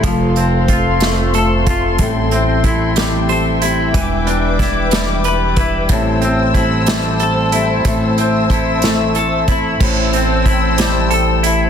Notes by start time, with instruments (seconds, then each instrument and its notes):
Already playing: clean electric guitar C4 E4 C5, string section A4
0.03 upright bass F1, steel-string acoustic guitar F3 A3 C4 F4 A4, string section C5 F5 C6, kick, closed hi-hat
0.35 steel-string acoustic guitar C4 F4 A4, closed hi-hat
0.68 steel-string acoustic guitar A3 C4 F4 A4, kick, closed hi-hat
1.00 steel-string acoustic guitar F3 A3 C4 F4 A4, snare, closed hi-hat
1.33 steel-string acoustic guitar A3 C4 F4 A4, closed hi-hat
1.65 steel-string acoustic guitar C4 F4 A4, kick, closed hi-hat
1.98 upright bass A1, steel-string acoustic guitar A2 E3 G3 C4 E4 A4, string section E5 G5, kick, closed hi-hat
2.31 steel-string acoustic guitar G3 C4 E4 A4, closed hi-hat
2.63 steel-string acoustic guitar G3 C4 E4 A4, kick, closed hi-hat
2.96 steel-string acoustic guitar A2 E3 G3 C4 E4 A4, snare, closed hi-hat
3.28 steel-string acoustic guitar G3 C4 E4 A4, clean electric guitar C5, closed hi-hat
3.61 steel-string acoustic guitar G3 C4 E4 A4, closed hi-hat
3.94 upright bass E1, steel-string acoustic guitar E3 G3 D4 E4 B4, string section B4 D6, kick, closed hi-hat
4.27 steel-string acoustic guitar D4 E4 B4, closed hi-hat
4.59 steel-string acoustic guitar G3 D4 E4 B4, kick, snare, closed hi-hat
4.91 steel-string acoustic guitar E3 G3 D4 E4 B4, snare, closed hi-hat
5.24 steel-string acoustic guitar G3 D4 E4 B4, closed hi-hat
5.56 steel-string acoustic guitar D4 E4 B4, kick, closed hi-hat
5.89 upright bass A1, steel-string acoustic guitar A2 E3 G3 C4 E4 A4, string section C5 A5 E6, kick, closed hi-hat
6.22 steel-string acoustic guitar G3 C4 E4 A4, closed hi-hat
6.54 steel-string acoustic guitar G3 C4 E4 A4, kick, closed hi-hat
6.86 steel-string acoustic guitar A2 E3 G3 C4 E4 A4, snare, closed hi-hat
7.19 steel-string acoustic guitar G3 C4 E4 A4, closed hi-hat
7.52 steel-string acoustic guitar G3 C4 E4 A4, closed hi-hat
7.84 upright bass A1, steel-string acoustic guitar A2 E3 A3 C4 E4 A4, string section E5 E6, kick, closed hi-hat
8.17 steel-string acoustic guitar A3 C4 E4 A4, closed hi-hat
8.49 steel-string acoustic guitar A3 C4 E4 A4, kick, closed hi-hat
8.82 steel-string acoustic guitar A2 E3 A3 C4 E4 A4, snare, closed hi-hat
9.15 steel-string acoustic guitar A3 C4 E4 A4, closed hi-hat
9.47 steel-string acoustic guitar A3 C4 E4 A4, kick, closed hi-hat
9.80 upright bass A1, clean electric guitar A2, string section C5 G5 A5 E6, kick, crash
10.13 clean electric guitar C4, closed hi-hat
10.46 clean electric guitar E4, kick, closed hi-hat
10.78 clean electric guitar G3, snare, closed hi-hat
11.11 clean electric guitar A4, closed hi-hat
11.43 clean electric guitar E4, closed hi-hat